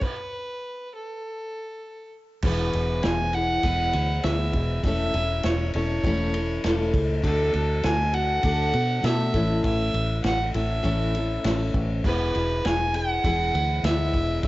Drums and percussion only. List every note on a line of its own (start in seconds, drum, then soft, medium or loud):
0.02 kick medium
0.02 crash medium
2.42 kick loud
2.42 crash loud
2.73 ride medium
3.03 snare loud
3.03 ride medium
3.33 ride medium
3.63 kick medium
3.63 ride medium
3.93 ride medium
4.24 snare loud
4.24 ride loud
4.53 kick medium
4.53 ride medium
4.84 kick loud
4.84 ride medium
5.14 ride medium
5.43 snare loud
5.43 ride loud
5.74 ride medium
6.04 kick medium
6.04 ride loud
6.34 ride medium
6.64 snare loud
6.64 ride loud
6.94 kick medium
6.94 ride medium
7.24 kick loud
7.24 ride loud
7.54 ride medium
7.83 snare loud
7.83 ride loud
8.14 ride medium
8.43 kick medium
8.43 ride medium
8.73 ride medium
9.04 snare loud
9.04 ride loud
9.34 kick medium
9.34 ride medium
9.64 kick loud
9.64 ride medium
9.94 ride medium
10.24 snare loud
10.24 ride loud
10.54 ride medium
10.84 kick medium
10.84 ride loud
11.15 ride medium
11.44 snare loud
11.44 ride loud
11.74 kick medium
11.74 ride medium
12.04 kick loud
12.04 crash medium
12.35 ride medium
12.65 snare loud
12.65 ride medium
12.94 ride medium
13.24 kick medium
13.24 ride loud
13.55 ride medium
13.84 snare loud
13.84 ride loud
14.14 kick medium
14.14 ride medium
14.43 kick loud
14.43 ride medium